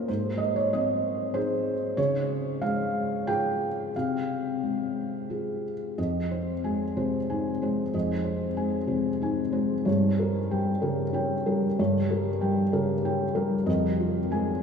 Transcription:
Already playing: A#2 A#3 C#4 F4 A#4 C#5 D#5 F5
0.08 G#2 C5
0.38 D#5
0.56 C#5
0.73 C4 D#5
1.34 D#4 G#4 C5
1.97 C#3 C#5
2.62 G#3 F5
3.27 F4 G#4 G5
3.96 C3 F5
4.63 G#3
5.30 F4 G#4
5.98 F2 D#5
6.31 C5
6.64 G#3 G#5
6.97 C3 C5
7.30 D#4 G#5
7.62 G#3 C5
7.94 F2 D#5
8.25 C5
8.57 G#3 G#5
8.87 C3 C5
9.21 D#4 G#5
9.52 G#3 C5
9.85 G2 C#5
10.19 A#4
10.51 G3 G5
10.82 C#3 A#4
11.13 C#4 G5
11.46 G3 A#4
11.79 G2 C#5
12.11 A#4
12.41 G3 G5
12.73 C#3 A#4
13.05 C#4 G5
13.35 G3 A#4
13.66 F2 D#5
14.00 F4
14.30 G#3 G#5

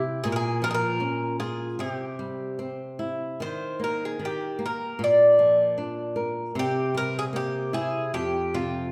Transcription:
Already playing: C3 E4
0.24 A#2 G#4
0.32 G#4 A#4
0.62 F3 A#4
0.71 G#4 A#4
1.00 C#4
1.40 F4 G#4
1.79 C3 G4
2.19 G3
2.59 C4
2.99 E4
3.40 D#3 C5
3.79 A#3
3.84 A#4
4.05 G#4
4.19 D#3
4.25 G4
4.59 A#3
4.66 A#4
4.99 A#2
5.04 D5
5.39 F3
5.78 D4
6.16 A#4
6.55 C3
6.59 G4
6.94 G3 A#4
7.19 G#4
7.33 A#3 G4
7.73 E4 G#4
8.14 F2 G4
8.54 C3 F4

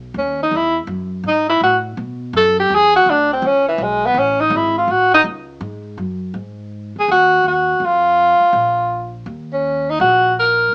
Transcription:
Already playing: B1
0.14 D#2 C#4
0.43 D#4
0.51 E2
0.56 E4
0.87 F#2
1.24 G#2
1.28 D#4
1.49 E4
1.60 A2 F#4
1.97 B2
2.33 F#2 A4
2.60 G4
2.70 E2
2.75 G#4
2.96 F#4
3.06 D2
3.10 D4
3.33 C4
3.42 C#2
3.46 C#4
3.68 E3
3.78 B1
3.83 G#3
4.06 B3
4.14 A1
4.19 C#4
4.40 D#4
4.50 G#1
4.56 E4
4.78 F4
4.88 A1 F#4
5.14 D#4
5.24 C#2
5.61 G#2
5.98 F#2
6.34 G#2
6.96 D#2 G#4
7.08 D#2 F#4
7.44 D#2 F#4
7.80 F2
7.85 F4
8.40 muted upright bass stroke
8.53 A#1
9.26 D#2
9.53 C#4
9.90 D#4
10.00 A#1 F#4
10.39 A#4

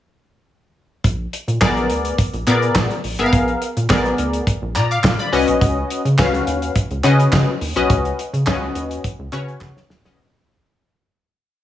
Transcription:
1.04 A#1, kick, closed hi-hat
1.33 closed hi-hat
1.48 A#2, closed hi-hat
1.61 A#1 B3 G#4 A#4 D5, kick, snare, clap
1.77 closed hi-hat
1.90 D2, closed hi-hat
2.05 closed hi-hat
2.18 kick, closed hi-hat
2.34 A#1, closed hi-hat
2.47 A#2 B3 G#4 A#4 D5, clap, closed hi-hat
2.62 closed hi-hat
2.75 A#2, kick, snare, clap
2.90 closed hi-hat
3.04 A#1, open hi-hat
3.19 G#1 B3 G#4 A#4 E5, closed hi-hat
3.26 F5
3.33 A#1, kick, closed hi-hat
3.48 closed hi-hat
3.62 closed hi-hat
3.77 A#2, closed hi-hat
3.89 A#1 B3 G#4 A#4 D5, kick, snare, clap
4.05 closed hi-hat
4.18 D2, closed hi-hat
4.33 closed hi-hat
4.47 kick, closed hi-hat
4.62 A#1
4.75 A#2 D5 A#5, clap, closed hi-hat
4.91 F5 D6, closed hi-hat
5.04 A#2, kick, snare, clap
5.19 D5 B5, closed hi-hat
5.32 C#2 C#4 F#4 B4 D#5, open hi-hat
5.48 B1, closed hi-hat
5.61 C#2, kick, closed hi-hat
5.90 closed hi-hat
6.05 C#3, closed hi-hat
6.18 C#2 C#4 F#4 B4 F5, kick, snare, clap
6.34 closed hi-hat
6.47 D#2, closed hi-hat
6.62 closed hi-hat
6.76 kick, closed hi-hat
6.91 C#2, closed hi-hat
7.04 C#3 C#4 F#4 B4 D#5, clap, closed hi-hat
7.20 closed hi-hat
7.32 C#3, kick, snare, clap
7.61 D#2, open hi-hat
7.76 B1 C#4 F#4 B4 D#5, closed hi-hat
7.90 C#2, kick, closed hi-hat
8.05 closed hi-hat
8.19 closed hi-hat
8.33 C#3, closed hi-hat
8.47 C#2 C#4 F4 B4 D#5, kick, snare, clap
8.54 F#4
8.75 D#2, closed hi-hat
8.91 closed hi-hat
9.04 kick, closed hi-hat
9.19 C#2
9.32 C#3 C#4 F#4 B4 C#5, clap, closed hi-hat
9.48 closed hi-hat
9.61 C#3, kick, snare, clap
9.77 snare
9.90 D#2, snare
10.05 B1 C#4 F#4 B4 D#5, snare

